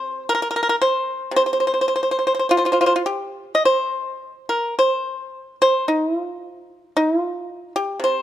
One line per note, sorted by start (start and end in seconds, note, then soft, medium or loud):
0.00 1.30 C3 medium
0.00 0.23 C5 medium
0.29 0.34 A#4 medium
0.35 0.40 A#4 medium
0.42 0.47 A#4 medium
0.51 0.55 A#4 medium
0.56 0.61 A#4 medium
0.63 0.68 A#4 medium
0.69 0.75 A#4 medium
0.82 1.31 C5 medium
1.31 4.74 C3 medium
1.36 1.42 C5 medium
1.46 1.50 C5 medium
1.53 1.57 C5 medium
1.60 1.65 C5 medium
1.67 1.72 C5 medium
1.74 1.79 C5 soft
1.81 1.86 C5 medium
1.88 1.94 C5 soft
1.96 2.01 C5 medium
2.03 2.09 C5 soft
2.11 2.17 C5 medium
2.19 2.24 C5 soft
2.27 2.32 C5 medium
2.35 2.38 C5 soft
2.39 2.46 C5 soft
2.49 2.56 F4 medium
2.49 2.55 C5 soft
2.57 2.64 F4 medium
2.57 2.63 C5 medium
2.65 2.71 F4 medium
2.65 2.70 C5 medium
2.72 2.78 F4 medium
2.72 2.78 C5 medium
2.81 2.85 F4 medium
2.81 2.85 C5 medium
2.86 2.93 F4 medium
2.86 2.92 C5 medium
2.96 3.01 F4 medium
3.06 3.52 G4 medium
3.55 3.62 D#5 medium
3.65 4.45 C5 medium
4.49 4.74 A#4 medium
4.79 5.55 C5 medium
5.62 5.85 C5 medium
5.88 6.07 D#4 medium
6.07 6.19 E4 medium
6.19 6.91 F4 medium
6.97 7.20 D#4 medium
7.20 7.72 F4 medium
7.76 8.00 G4 medium
8.00 8.22 C3 medium
8.04 8.22 C5 medium